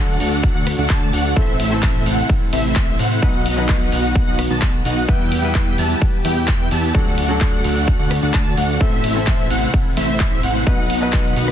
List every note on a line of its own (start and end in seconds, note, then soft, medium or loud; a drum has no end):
0.00 0.18 D2 loud
0.00 1.35 D3 medium
0.00 1.38 F#3 medium
0.00 0.17 A3 loud
0.00 1.36 A3 medium
0.00 3.19 A3 medium
0.00 0.17 D4 medium
0.00 1.38 D4 medium
0.00 0.17 F#4 medium
0.00 1.35 F#4 medium
0.00 1.37 A4 loud
0.00 0.17 D5 medium
0.00 0.17 F#5 loud
0.20 0.53 D2 loud
0.20 0.52 A3 medium
0.20 0.52 D4 medium
0.20 0.52 F#4 medium
0.20 0.52 D5 medium
0.20 0.52 F#5 medium
0.20 open hi-hat medium
0.20 ride medium
0.43 kick loud
0.55 0.76 D2 loud
0.55 0.67 A3 loud
0.55 0.67 D4 medium
0.55 0.67 F#4 medium
0.55 0.67 D5 medium
0.55 0.67 F#5 loud
0.67 cross-stick medium
0.67 open hi-hat loud
0.67 ride medium
0.78 0.88 D2 loud
0.78 0.88 A3 medium
0.78 0.88 D4 medium
0.78 0.88 F#4 medium
0.78 0.88 D5 medium
0.78 0.88 F#5 loud
0.90 1.11 D2 medium
0.90 1.10 A3 medium
0.90 1.10 D4 medium
0.90 1.10 F#4 medium
0.90 1.10 D5 medium
0.90 1.10 A5 medium
0.90 kick loud
0.90 clap loud
1.13 1.34 D2 loud
1.13 1.34 A3 loud
1.13 1.34 D4 medium
1.13 1.34 F#4 medium
1.13 1.34 D5 medium
1.13 1.34 F#5 loud
1.13 open hi-hat loud
1.13 ride medium
1.36 2.04 A1 loud
1.36 1.68 A2 medium
1.36 3.21 C3 medium
1.36 1.68 E3 medium
1.36 1.69 A3 medium
1.36 2.03 A3 loud
1.36 2.03 C4 medium
1.36 1.69 C4 medium
1.36 2.03 E4 medium
1.36 3.21 E4 medium
1.36 1.69 A4 medium
1.36 2.03 C5 medium
1.36 2.03 E5 loud
1.36 kick loud
1.60 open hi-hat loud
1.60 ride medium
1.70 3.19 A2 medium
1.70 3.19 E3 medium
1.70 3.20 A3 medium
1.70 3.20 C4 medium
1.70 3.20 A4 loud
1.83 kick loud
1.83 clap loud
2.06 2.23 A1 loud
2.06 2.25 A3 loud
2.06 2.25 C4 medium
2.06 2.25 E4 medium
2.06 2.25 C5 medium
2.06 2.25 F#5 loud
2.06 open hi-hat loud
2.06 ride medium
2.29 kick loud
2.53 2.97 A1 loud
2.53 2.96 A3 loud
2.53 2.96 C4 medium
2.53 2.96 E4 medium
2.53 2.96 C5 medium
2.53 2.96 E5 loud
2.53 open hi-hat loud
2.53 ride medium
2.76 kick loud
2.76 clap loud
2.99 3.20 A2 loud
2.99 3.20 A3 medium
2.99 3.20 C4 medium
2.99 3.20 E4 medium
2.99 3.20 C5 medium
2.99 3.20 F#5 loud
2.99 3.20 F#5 medium
2.99 open hi-hat loud
2.99 ride medium
3.22 3.90 B1 loud
3.22 3.54 B2 medium
3.22 5.07 D#3 medium
3.22 3.54 F#3 medium
3.22 3.89 B3 loud
3.22 3.55 B3 medium
3.22 6.91 B3 medium
3.22 3.89 D#4 medium
3.22 3.55 D#4 medium
3.22 3.89 F#4 medium
3.22 5.07 F#4 medium
3.22 3.55 B4 medium
3.22 3.89 D#5 medium
3.22 3.89 F#5 loud
3.22 kick loud
3.46 open hi-hat loud
3.46 ride medium
3.56 5.05 B2 medium
3.56 5.05 F#3 medium
3.56 5.06 B3 medium
3.56 5.06 D#4 medium
3.56 5.06 B4 loud
3.69 kick loud
3.69 clap loud
3.92 4.25 B1 loud
3.92 4.24 B3 medium
3.92 4.24 D#4 medium
3.92 4.24 F#4 medium
3.92 4.24 D#5 medium
3.92 4.24 F#5 medium
3.92 open hi-hat loud
3.92 ride medium
4.16 kick loud
4.27 4.48 B1 loud
4.27 4.39 B3 loud
4.27 4.39 D#4 medium
4.27 4.39 F#4 loud
4.27 4.39 D#5 medium
4.27 4.39 F#5 loud
4.39 cross-stick medium
4.39 open hi-hat loud
4.39 ride medium
4.50 4.83 B1 medium
4.50 4.69 B3 medium
4.50 4.69 D#4 medium
4.50 4.69 F#4 medium
4.50 4.69 D#5 medium
4.50 4.69 A5 medium
4.62 kick loud
4.62 clap loud
4.85 5.06 B1 loud
4.85 5.06 B3 medium
4.85 5.06 D#4 medium
4.85 5.06 F#4 medium
4.85 5.06 D#5 medium
4.85 5.06 F#5 medium
4.85 open hi-hat medium
4.85 ride medium
5.08 5.76 E2 loud
5.08 6.93 E3 medium
5.08 5.40 G3 medium
5.08 5.41 B3 medium
5.08 5.76 B3 medium
5.08 5.76 E4 medium
5.08 5.41 E4 medium
5.08 6.93 G4 medium
5.08 5.76 G4 medium
5.08 5.41 B4 medium
5.08 5.76 E5 medium
5.08 5.76 G5 loud
5.08 kick loud
5.32 open hi-hat loud
5.32 ride medium
5.42 6.91 G3 medium
5.42 6.92 B3 medium
5.42 6.92 E4 medium
5.42 6.92 B4 loud
5.55 kick loud
5.55 clap loud
5.78 5.95 E2 loud
5.78 5.97 B3 loud
5.78 5.97 E4 medium
5.78 5.97 G4 medium
5.78 5.97 E5 medium
5.78 5.97 A5 loud
5.78 open hi-hat loud
5.78 ride medium
6.02 kick loud
6.25 6.69 E2 loud
6.25 6.69 B3 loud
6.25 6.69 E4 medium
6.25 6.69 G4 medium
6.25 6.69 E5 medium
6.25 6.69 G5 loud
6.25 open hi-hat loud
6.25 ride medium
6.48 kick loud
6.48 clap loud
6.71 6.92 E2 loud
6.71 6.92 B3 medium
6.71 6.92 E4 medium
6.71 6.92 G4 medium
6.71 6.92 E5 medium
6.71 6.92 A5 loud
6.71 open hi-hat medium
6.71 ride medium
6.94 7.62 D2 loud
6.94 8.79 D3 medium
6.94 7.26 F#3 medium
6.94 7.27 A3 medium
6.94 10.63 A3 medium
6.94 7.62 A3 loud
6.94 7.62 D4 medium
6.94 7.27 D4 medium
6.94 7.62 F#4 medium
6.94 8.79 F#4 medium
6.94 7.27 A4 medium
6.94 7.62 D5 medium
6.94 7.62 F#5 loud
6.94 kick loud
7.18 open hi-hat loud
7.18 ride medium
7.28 8.77 F#3 medium
7.28 8.78 A3 medium
7.28 8.78 D4 medium
7.28 8.78 A4 loud
7.41 kick loud
7.41 clap loud
7.64 7.97 D2 loud
7.64 7.97 A3 medium
7.64 7.96 D4 medium
7.64 7.97 F#4 medium
7.64 7.97 D5 medium
7.64 7.96 F#5 medium
7.64 open hi-hat medium
7.64 ride medium
7.88 kick loud
7.99 8.20 D2 loud
7.99 8.11 A3 loud
7.99 8.11 D4 medium
7.99 8.11 F#4 medium
7.99 8.11 D5 medium
7.99 8.11 F#5 loud
8.11 cross-stick medium
8.11 open hi-hat loud
8.11 ride medium
8.22 8.32 D2 loud
8.22 8.32 A3 medium
8.22 8.32 D4 medium
8.22 8.32 F#4 medium
8.22 8.32 D5 medium
8.22 8.32 F#5 medium
8.22 8.32 F#5 loud
8.34 8.55 D2 loud
8.34 8.55 A3 medium
8.34 8.55 D4 medium
8.34 8.55 F#4 medium
8.34 8.55 D5 medium
8.34 8.55 A5 medium
8.34 kick loud
8.34 clap loud
8.57 8.78 D2 loud
8.57 8.78 A3 loud
8.57 8.78 D4 medium
8.57 8.78 F#4 medium
8.57 8.78 D5 medium
8.57 8.78 F#5 loud
8.57 open hi-hat medium
8.57 ride medium
8.80 9.48 A1 loud
8.80 9.12 A2 medium
8.80 10.65 C3 medium
8.80 9.13 E3 medium
8.80 9.48 A3 medium
8.80 9.13 A3 medium
8.80 9.48 C4 medium
8.80 9.13 C4 medium
8.80 9.48 E4 medium
8.80 10.65 E4 loud
8.80 9.13 A4 medium
8.80 9.48 C5 medium
8.80 9.48 E5 loud
8.80 kick loud
9.04 open hi-hat loud
9.04 ride medium
9.14 10.63 A2 medium
9.14 10.64 E3 medium
9.14 10.64 A3 medium
9.14 10.64 C4 medium
9.14 10.65 A4 loud
9.27 kick loud
9.27 clap loud
9.50 9.67 A1 loud
9.50 9.69 A3 loud
9.50 9.69 C4 medium
9.50 9.69 E4 medium
9.50 9.69 C5 medium
9.50 9.69 F#5 loud
9.50 open hi-hat medium
9.50 ride medium
9.74 kick loud
9.97 10.41 A1 loud
9.97 10.41 A3 loud
9.97 10.41 C4 medium
9.97 10.41 E4 medium
9.97 10.41 C5 medium
9.97 10.41 E5 loud
9.97 open hi-hat loud
9.97 ride medium
10.20 kick loud
10.20 clap loud
10.43 10.64 A1 loud
10.43 10.64 A3 medium
10.43 10.64 C4 medium
10.43 10.64 E4 medium
10.43 10.64 C5 medium
10.43 10.64 F#5 loud
10.43 open hi-hat medium
10.43 ride medium
10.66 11.34 B1 loud
10.66 10.99 B2 medium
10.66 11.52 D#3 medium
10.66 10.99 F#3 medium
10.66 11.34 B3 loud
10.66 11.52 B3 medium
10.66 10.99 B3 medium
10.66 11.34 D#4 medium
10.66 10.99 D#4 medium
10.66 11.34 F#4 medium
10.66 11.52 F#4 medium
10.66 10.99 B4 medium
10.66 11.34 D#5 medium
10.66 11.34 F#5 loud
10.66 kick loud
10.90 open hi-hat loud
10.90 ride medium
11.00 11.52 B2 medium
11.00 11.52 F#3 medium
11.00 11.52 B3 medium
11.00 11.52 D#4 medium
11.00 11.52 B4 loud
11.13 kick loud
11.13 clap loud
11.36 11.52 B1 loud
11.36 11.52 B3 medium
11.36 11.52 D#4 medium
11.36 11.52 F#4 medium
11.36 11.52 D#5 medium
11.36 11.52 F#5 medium
11.36 open hi-hat medium
11.36 ride medium
11.48 cross-stick medium